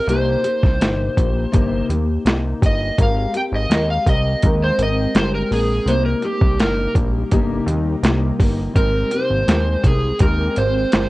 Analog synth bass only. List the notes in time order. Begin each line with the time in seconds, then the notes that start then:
0.07 C2
0.63 C2
0.80 G1
1.17 A#1
1.54 G1
1.89 D#2
2.25 C2
2.62 G1
2.98 G#1
3.52 G#1
3.69 D#2
4.07 C2
4.43 D#2
4.78 G#1
5.15 G1
5.51 A#1
5.86 C2
6.42 C2
6.58 G1
6.95 A#1
7.32 G1
7.66 D#2
8.03 C2
8.40 G1
8.75 G#1
9.30 G#1
9.48 D#2
9.84 C2
10.20 D#2
10.57 G#1
10.93 G1